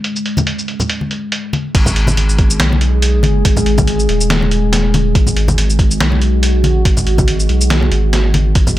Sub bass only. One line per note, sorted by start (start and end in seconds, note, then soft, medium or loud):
1.75 2.58 G#1 loud
2.60 3.44 B1 medium
3.45 4.07 G#1 loud
4.09 5.14 D#1 loud
5.15 5.99 G#1 loud
6.00 6.59 B1 medium
6.59 6.84 A#1 medium
6.85 7.48 G#1 loud
7.49 7.90 B1 medium
7.92 8.54 G#1 loud
8.55 8.79 G#1 loud